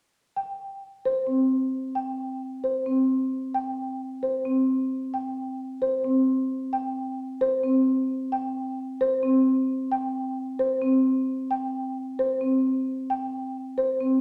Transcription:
0.36 0.66 G5 medium
1.05 1.35 C5 medium
1.27 1.57 C4 medium
1.95 2.25 G5 medium
2.64 2.93 C5 medium
2.86 3.16 C4 medium
3.54 3.84 G5 medium
4.23 4.52 C5 medium
4.45 4.75 C4 medium
5.14 5.43 G5 medium
5.82 6.11 C5 medium
6.04 6.34 C4 medium
6.73 7.02 G5 medium
7.41 7.71 C5 medium
7.63 7.93 C4 medium
8.32 8.62 G5 medium
9.01 9.30 C5 medium
9.23 9.52 C4 medium
9.92 10.21 G5 medium
10.59 10.89 C5 medium
10.82 11.11 C4 medium
11.51 11.80 G5 medium
12.19 12.48 C5 medium
12.41 12.71 C4 medium
13.10 13.39 G5 medium
13.78 14.07 C5 medium
14.00 14.21 C4 medium

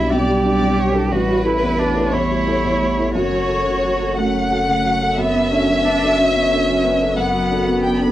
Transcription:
0.00 1.08 B1 soft
0.00 1.13 B1 medium
0.00 0.11 B2 soft
0.00 0.28 G3 soft
0.00 1.11 G3 medium
0.00 0.44 D4 soft
0.00 0.13 E4 medium
0.00 3.14 E4 medium
0.00 0.45 G4 soft
0.00 1.06 D5 soft
0.10 0.37 B2 soft
0.10 1.13 G4 medium
0.10 0.77 D5 medium
0.28 0.54 G3 soft
0.44 0.59 D4 soft
0.44 0.59 G4 soft
0.62 0.88 B2 soft
0.77 1.04 G3 soft
0.77 0.95 C#5 medium
0.94 1.09 D4 soft
0.94 1.09 G4 soft
0.94 1.11 A4 medium
1.10 3.16 A1 medium
1.10 3.11 A1 medium
1.10 5.18 A3 soft
1.10 1.45 F#4 medium
1.10 2.12 B4 medium
1.10 5.18 C#5 medium
1.28 1.55 G3 soft
1.45 1.60 E4 soft
1.45 1.80 E4 soft
1.45 1.60 A4 soft
1.63 1.89 E2 soft
1.79 2.06 G3 soft
1.79 2.14 D4 medium
1.96 2.11 E4 soft
1.96 2.11 A4 soft
2.11 2.40 E2 soft
2.11 3.14 E4 medium
2.11 3.12 C#5 medium
2.30 2.57 G3 soft
2.47 2.62 E4 soft
2.47 2.62 A4 soft
2.64 2.91 E2 soft
2.82 3.08 G3 soft
2.99 3.13 E4 soft
2.99 3.13 A4 soft
3.14 8.12 F#1 medium
3.14 5.15 F#2 medium
3.14 8.12 F#4 medium
3.14 4.20 F#4 medium
3.14 4.15 C#5 medium
3.32 3.59 F#3 soft
3.48 3.64 F#4 soft
3.48 3.64 A4 soft
3.66 3.93 C#3 soft
3.84 4.11 F#3 soft
4.01 4.16 F#4 soft
4.01 4.16 A4 soft
4.17 4.45 C#3 soft
4.17 5.21 A3 medium
4.17 5.16 F#5 medium
4.34 4.61 F#3 soft
4.51 4.67 F#4 soft
4.51 4.67 A4 soft
4.68 4.95 C#3 soft
4.84 5.11 F#3 soft
5.01 5.16 F#4 soft
5.01 5.17 A4 soft
5.18 7.13 F#2 medium
5.18 8.12 B3 soft
5.18 5.52 B3 medium
5.18 8.12 B4 medium
5.18 7.17 E5 loud
5.35 5.61 B3 soft
5.52 5.87 C#4 medium
5.52 5.66 D4 soft
5.52 5.67 A4 soft
5.67 5.94 F#3 soft
5.85 6.11 B3 soft
5.85 6.19 D4 medium
6.02 6.17 D4 soft
6.02 6.17 A4 soft
6.18 6.44 F#3 soft
6.18 7.17 C#4 soft
6.35 6.61 B3 soft
6.51 6.66 D4 soft
6.51 6.66 A4 soft
6.69 6.95 F#3 soft
6.85 7.11 B3 soft
7.02 7.16 D4 soft
7.02 7.17 A4 soft
7.17 8.12 F#2 medium
7.17 8.12 B3 medium
7.17 7.84 F#5 medium
7.34 7.61 F#3 soft
7.51 7.66 D4 soft
7.51 7.66 A4 soft
7.67 7.94 B3 soft
7.83 8.10 F#3 soft
7.83 8.00 G5 medium
7.99 8.12 D4 soft
7.99 8.12 A4 soft
7.99 8.12 B5 medium

